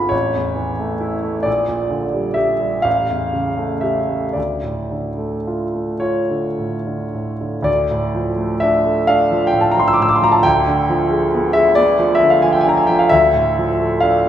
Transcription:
grand piano
Already playing: G#1 G#2 D3 B3 F4 G#5 B5
0.09 A1 C#5
0.34 E2
0.56 E3
0.79 A3
1.00 E4
1.23 A3
1.43 A#1 D5
1.68 A#2
1.91 D3
2.13 G3
2.34 G4 E5
2.60 G3
2.82 A1 F5
3.10 E2
3.33 C#3
3.57 A3
3.81 G4 E5
4.10 A3
4.33 D2 D5
4.63 A2
4.91 D3
5.18 A3
5.47 F4
5.74 A3
6.00 F4 C#5
6.30 D3
6.59 A2
6.87 D3
7.15 A2
7.41 D3
7.63 D2 D5
7.91 A2
8.15 F3
8.38 A3
8.60 D4 E5
8.85 A3
9.07 D4 F5
9.32 F3
9.47 G5
9.53 A2
9.61 A5
9.71 A#5
9.77 F3 C6
9.88 E6
9.93 D6
10.00 A2 E6
10.09 D6
10.16 C6
10.22 F3 A#5
10.32 A5
10.43 D2 G5
10.68 D3
10.90 F3
11.11 G#3
11.34 B3
11.53 G#3 E5
11.75 B3 D5
11.99 F3
12.15 E5
12.23 D3
12.30 F5
12.42 F3 G#5
12.52 G5
12.61 G#5
12.66 D3 A#5
12.77 G#5
12.87 F3 G5
12.99 F5
13.09 D2 E5
13.34 A2
13.58 F3
13.80 A3
14.00 D4 F5
14.25 A3

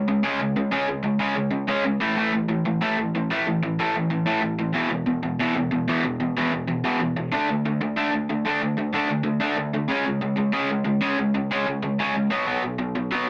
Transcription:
overdriven electric guitar
0.08 C#3 G#3
0.23 C#3 G#3 C#4
0.40 C#3 G#3
0.57 C#3 G#3
0.72 C#3 G#3 C#4
0.88 C#3 G#3
1.03 C#3 G#3
1.19 C#3 G#3 C#4
1.35 C#3 G#3
1.51 C#3 G#3
1.68 C#3 G#3 C#4
1.85 C#3 G#3
2.01 A2 E3 A3
2.17 A2 E3 A3
2.33 A2 E3
2.49 A2 E3
2.66 A2 E3
2.82 A2 E3 A3
2.99 A2 E3
3.15 A2 E3
3.31 A2 E3 A3
3.47 A2 E3
3.63 A2 E3
3.79 A2 E3 A3
3.96 A2 E3
4.10 A2 E3
4.26 A2 E3 A3
4.42 A2 E3
4.59 A2 E3
4.74 E2 B2 E3
4.91 E2 B2
5.07 E2 B2
5.23 E2 B2
5.39 E2 B2 E3
5.55 E2 B2
5.71 E2 B2
5.88 E2 B2 E3
6.04 E2 B2
6.20 E2 B2
6.37 E2 B2 E3
6.52 E2 B2
6.67 E2 B2
6.84 E2 B2 E3
7.00 E2 B2
7.17 E2 B2
7.32 D3 A3 D4
7.49 D3 A3
7.65 D3 A3
7.81 D3 A3
7.96 D3 A3 D4
8.11 D3 A3
8.29 D3 A3
8.45 D3 A3 D4
8.61 D3 A3
8.77 D3 A3
8.93 D3 A3 D4
9.09 D3 A3
9.23 D3 A3
9.40 D3 A3 D4
9.57 D3 A3
9.74 D3 A3
9.88 C#3 G#3 C#4
10.05 C#3 G#3
10.21 C#3 G#3
10.37 C#3 G#3
10.53 C#3 G#3 C#4
10.70 C#3 G#3
10.85 C#3 G#3
11.01 C#3 G#3 C#4
11.19 C#3 G#3
11.35 C#3 G#3
11.51 C#3 G#3 C#4
11.67 C#3 G#3
11.83 C#3 G#3
11.99 C#3 G#3 C#4
12.14 C#3 G#3
12.30 B2 F#3 B3
12.46 B2 F#3 B3
12.63 B2 F#3
12.79 B2 F#3
12.96 B2 F#3
13.11 B2 F#3 B3

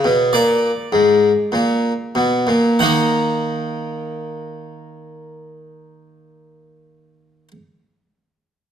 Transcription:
harpsichord
Already playing: C#5
0.04 B2
0.33 A#2 D5
0.92 G#2
1.52 A#2
2.15 B2
2.47 A#2
2.79 D#3 A#3 D#4 F#5

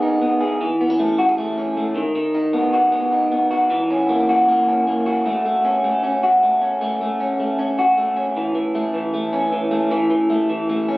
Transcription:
clean electric guitar
Already playing: D#3 B3 G#4
0.02 D#4
0.22 B3
0.41 G#4
0.61 E3
0.81 B3
0.90 C#4
0.99 A3
1.18 F#4
1.29 G#4
1.38 A3
1.58 C#4
1.77 A3
1.95 D#3
2.15 D#3
2.35 D#4
2.53 B3
2.73 F#4
2.92 B3
3.12 D#4
3.32 B3
3.51 F#4
3.70 E3
3.90 C#4
4.09 A#3
4.29 F#4
4.49 A#3
4.68 C#4
4.87 A#3
5.06 F#4
5.26 A3
5.45 A3
5.65 C#4
5.84 A3
6.03 C#4
6.23 F#4
6.43 A3
6.62 C#4
6.81 A3
7.01 A3
7.20 C#4
7.40 A3
7.59 C#4
7.79 F#4
7.98 A3
8.17 C#4
8.37 E3
8.55 E3
8.75 A3
8.94 E3
9.14 A3
9.33 C#4
9.52 E3
9.71 A3
9.91 E3
10.11 E3
10.30 A3
10.50 E3
10.69 A3
10.88 C#4

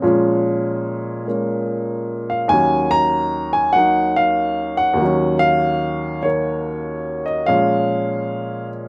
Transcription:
upright piano
0.02 A#2 F3 G#3 C#4
1.26 G#3 A#3 C#4
2.30 F5
2.48 D#2 D#3 F#3 G#5
2.53 C#4
2.91 A#5
3.53 G#5
3.73 F#3 A#3 F#5
3.77 D#4
4.16 F5
4.77 F#5
4.94 D#2 D#3
5.01 F#3 C#4
5.39 F5
6.22 D#3 A#3 C#5
7.26 D#5
7.46 A#2 F3 G#3 C#4 F5

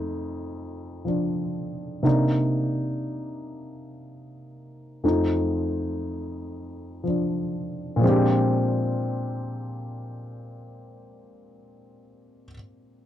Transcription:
grand piano
Already playing: F2 F3 A3 D#4
1.05 F3 D4
2.03 C3 A#3 D4 D#4
5.04 F2 F3 A3 D#4
7.04 F3 D4
7.96 A#2 F3
8.02 G#3 C4
8.07 D4 G4

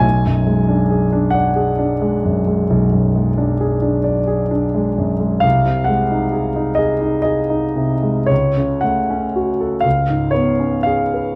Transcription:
grand piano
0.00 B1 G#5
0.25 F#2
0.47 G#3
0.69 D4
0.90 G#4
1.12 D4
1.31 D5 F#5
1.56 G#4
1.79 D4
2.01 G#3
2.25 F#2
2.47 G#3
2.70 B1
2.93 F#2
3.15 G#3
3.38 D4
3.60 G#4
3.82 D4
4.04 D5
4.27 G#4
4.51 D4
4.75 G#3
4.98 F#2
5.20 G#3
5.40 C2 F5
5.66 C3
5.84 G#3 F#5
6.11 D#4
6.33 G#4
6.56 D#4
6.75 G#4 D#5
7.01 D#4
7.22 G#4 D#5
7.50 D#4
7.76 C3
8.03 G#3
8.26 C#2 C#5
8.57 C#3
8.81 A3 F#5
9.10 C#4
9.36 F#4
9.61 A4
9.81 C#2 F5
10.09 G#2
10.31 B3 C#5
10.60 C#4
10.83 G#4 F5
11.14 B4

